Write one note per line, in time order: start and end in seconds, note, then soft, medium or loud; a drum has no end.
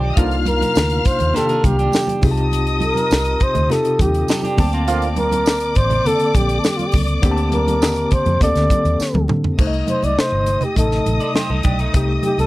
0.00 0.11 B1 medium
0.00 0.19 D3 medium
0.00 0.19 D#3 medium
0.00 0.15 D4 medium
0.00 0.19 F4 medium
0.00 0.15 G4 medium
0.00 0.19 G4 medium
0.00 0.10 D5 medium
0.00 0.10 D6 medium
0.11 0.18 D#5 medium
0.11 0.18 D#6 medium
0.16 0.63 C2 loud
0.16 1.19 C3 medium
0.16 0.36 D3 medium
0.16 0.36 F3 medium
0.16 1.19 A#3 medium
0.16 0.36 A#3 medium
0.16 1.19 D4 medium
0.16 1.20 D#4 medium
0.16 0.36 F4 medium
0.16 1.20 F4 medium
0.16 1.90 F5 medium
0.16 1.90 F6 medium
0.16 kick loud
0.16 closed hi-hat medium
0.31 closed hi-hat soft
0.45 1.08 A#4 medium
0.45 closed hi-hat medium
0.45 muted conga soft
0.45 high conga medium
0.61 closed hi-hat medium
0.61 high conga medium
0.75 0.99 D2 medium
0.75 snare loud
0.75 tambourine medium
0.75 muted conga soft
0.90 closed hi-hat medium
1.05 1.37 C5 medium
1.05 kick medium
1.05 closed hi-hat medium
1.05 muted conga soft
1.19 1.32 D#2 medium
1.19 closed hi-hat soft
1.19 low conga medium
1.33 2.21 C3 medium
1.33 2.24 D#3 medium
1.33 2.23 A#3 medium
1.33 2.23 D4 medium
1.33 1.49 G4 medium
1.33 2.23 G4 medium
1.33 1.67 A4 medium
1.33 1.49 C5 medium
1.33 snare soft
1.33 closed hi-hat medium
1.33 low conga medium
1.49 1.78 F4 medium
1.49 1.77 A#4 medium
1.49 closed hi-hat medium
1.64 1.87 C2 medium
1.64 2.24 G4 medium
1.64 kick medium
1.64 closed hi-hat medium
1.64 muted conga soft
1.64 high conga medium
1.79 2.21 D4 medium
1.79 2.21 G4 medium
1.79 closed hi-hat soft
1.92 snare medium
1.92 tambourine medium
1.92 muted conga soft
1.92 high conga medium
2.08 closed hi-hat medium
2.08 high conga medium
2.21 2.91 C2 medium
2.21 3.25 C3 medium
2.21 3.25 C4 medium
2.21 3.26 D#4 medium
2.21 3.25 F4 medium
2.21 3.26 G4 medium
2.21 2.30 G#4 medium
2.21 4.26 D#5 medium
2.21 4.26 D#6 loud
2.21 kick loud
2.21 open hi-hat medium
2.21 high conga medium
2.31 3.29 A5 medium
2.37 closed hi-hat soft
2.51 closed hi-hat loud
2.51 muted conga soft
2.67 closed hi-hat soft
2.80 closed hi-hat medium
2.80 high conga medium
2.85 3.44 A#4 medium
2.95 closed hi-hat medium
2.95 high conga medium
3.11 3.34 C2 loud
3.11 snare loud
3.11 tambourine medium
3.11 muted conga soft
3.25 closed hi-hat medium
3.40 3.73 C5 medium
3.40 kick medium
3.40 closed hi-hat medium
3.55 3.67 D2 medium
3.55 closed hi-hat soft
3.55 low conga medium
3.69 4.58 C3 medium
3.69 4.58 C4 medium
3.69 4.58 D#4 medium
3.69 4.58 F4 medium
3.69 4.59 G4 medium
3.69 4.03 A4 medium
3.69 4.59 A4 medium
3.69 snare soft
3.69 closed hi-hat medium
3.69 low conga medium
3.85 closed hi-hat medium
3.99 4.22 D#2 medium
3.99 4.59 G4 medium
3.99 kick medium
3.99 closed hi-hat medium
3.99 muted conga soft
3.99 high conga medium
4.14 closed hi-hat medium
4.28 4.43 D#4 medium
4.28 4.43 A4 medium
4.28 snare medium
4.28 tambourine medium
4.28 muted conga soft
4.28 high conga soft
4.43 4.72 D4 medium
4.43 4.72 G4 medium
4.43 closed hi-hat medium
4.43 high conga medium
4.57 5.78 D2 medium
4.57 5.60 D3 medium
4.57 5.60 A#3 medium
4.57 5.61 C4 medium
4.57 8.96 D5 medium
4.57 5.61 A5 medium
4.57 8.96 D6 loud
4.57 kick loud
4.57 open hi-hat medium
4.57 muted conga soft
4.57 high conga medium
4.73 5.58 C4 medium
4.73 5.58 F4 medium
4.73 closed hi-hat soft
4.87 5.06 D3 medium
4.87 5.06 F3 medium
4.87 5.06 A#3 medium
4.87 5.06 F4 loud
4.87 closed hi-hat loud
5.02 closed hi-hat soft
5.16 5.78 A#4 medium
5.16 closed hi-hat medium
5.16 high conga medium
5.32 closed hi-hat medium
5.32 high conga medium
5.46 snare loud
5.46 tambourine medium
5.60 closed hi-hat medium
5.75 5.99 A1 medium
5.75 6.08 C5 loud
5.75 kick medium
5.75 closed hi-hat medium
5.90 closed hi-hat soft
5.90 low conga medium
6.04 7.07 D3 medium
6.04 7.08 A#3 medium
6.04 7.08 C4 medium
6.04 6.38 A4 loud
6.04 7.09 A4 medium
6.04 closed hi-hat medium
6.04 muted conga soft
6.04 low conga medium
6.20 closed hi-hat medium
6.35 6.58 A#1 medium
6.35 6.61 G4 medium
6.35 kick medium
6.35 closed hi-hat medium
6.35 high conga medium
6.49 closed hi-hat medium
6.59 6.70 A4 medium
6.64 snare loud
6.64 tambourine medium
6.64 muted conga soft
6.64 high conga soft
6.68 6.79 G4 medium
6.77 6.88 F4 medium
6.77 closed hi-hat medium
6.77 high conga medium
6.87 6.95 G4 medium
6.92 7.17 C#2 medium
6.92 kick loud
6.92 open hi-hat medium
6.92 muted conga soft
6.92 high conga medium
7.08 closed hi-hat medium
7.22 7.82 D2 loud
7.22 8.25 D3 medium
7.22 8.26 A#3 medium
7.22 8.26 C4 medium
7.22 7.31 G4 medium
7.22 kick loud
7.22 closed hi-hat medium
7.31 8.30 A5 loud
7.37 closed hi-hat soft
7.52 8.14 A#4 medium
7.52 closed hi-hat medium
7.52 high conga medium
7.68 closed hi-hat medium
7.68 high conga medium
7.82 8.05 D#2 medium
7.82 snare loud
7.82 tambourine medium
7.82 muted conga soft
7.96 closed hi-hat medium
8.11 8.42 C5 medium
8.11 kick medium
8.11 closed hi-hat medium
8.11 low conga medium
8.26 8.38 F2 medium
8.26 closed hi-hat soft
8.26 low conga medium
8.41 8.53 D2 medium
8.41 9.43 D3 medium
8.41 9.43 A#3 medium
8.41 9.44 C4 medium
8.41 9.44 A4 medium
8.41 9.26 D5 loud
8.41 kick medium
8.41 closed hi-hat medium
8.41 low conga medium
8.55 8.67 D2 medium
8.55 snare soft
8.55 closed hi-hat medium
8.70 kick medium
8.70 closed hi-hat medium
8.70 muted conga soft
8.70 high conga medium
8.85 8.96 D#2 medium
8.85 closed hi-hat medium
9.00 muted fingered electric bass stroke soft
9.00 snare soft
9.00 tambourine medium
9.00 muted conga soft
9.14 9.26 D2 medium
9.14 high tom medium
9.14 high conga medium
9.28 9.52 D3 medium
9.28 mid tom medium
9.28 muted conga soft
9.28 high conga medium
9.44 floor tom medium
9.58 9.82 C2 medium
9.58 10.61 C3 medium
9.58 10.61 A3 medium
9.58 10.61 D#4 medium
9.58 9.66 C5 medium
9.58 12.47 D#5 medium
9.58 12.47 D#6 medium
9.58 kick loud
9.58 crash medium
9.58 muted conga soft
9.67 10.65 D#5 medium
9.73 closed hi-hat soft
9.87 10.06 C5 medium
9.87 closed hi-hat medium
9.87 muted conga soft
9.87 high conga medium
10.03 10.14 C2 medium
10.03 10.21 D5 medium
10.03 closed hi-hat medium
10.03 high conga medium
10.19 10.65 C5 medium
10.19 snare loud
10.32 10.55 G1 medium
10.46 closed hi-hat medium
10.46 muted conga soft
10.61 10.78 G4 medium
10.61 closed hi-hat soft
10.61 low conga medium
10.76 10.99 A1 medium
10.76 11.78 C3 medium
10.76 11.79 A3 medium
10.76 11.79 D#4 medium
10.76 11.32 A4 medium
10.76 11.80 D#5 medium
10.76 kick medium
10.76 closed hi-hat medium
10.76 muted conga soft
10.76 low conga medium
10.91 snare soft
11.06 11.17 A1 medium
11.06 closed hi-hat medium
11.06 high conga medium
11.20 11.35 A4 medium
11.20 11.34 D5 medium
11.20 closed hi-hat soft
11.35 11.50 G4 medium
11.35 11.49 C5 medium
11.35 snare medium
11.35 muted conga soft
11.35 high conga soft
11.50 11.61 C2 medium
11.50 11.65 D#4 medium
11.50 11.64 A4 medium
11.50 high conga medium
11.63 11.88 B1 medium
11.63 11.79 D4 medium
11.63 11.79 G4 medium
11.63 kick loud
11.63 closed hi-hat medium
11.63 muted conga soft
11.63 high conga medium
11.79 12.08 A3 medium
11.79 12.08 D#4 medium
11.79 closed hi-hat soft
11.93 12.17 C2 medium
11.93 12.47 C3 medium
11.93 12.47 A3 medium
11.93 12.47 D#4 medium
11.93 12.47 G4 medium
11.93 kick loud
11.93 closed hi-hat medium
11.93 muted conga soft
12.23 12.38 G4 medium
12.23 closed hi-hat medium
12.23 muted conga soft
12.23 high conga medium
12.38 12.47 C2 medium
12.38 12.47 A4 medium
12.38 closed hi-hat medium
12.38 high conga medium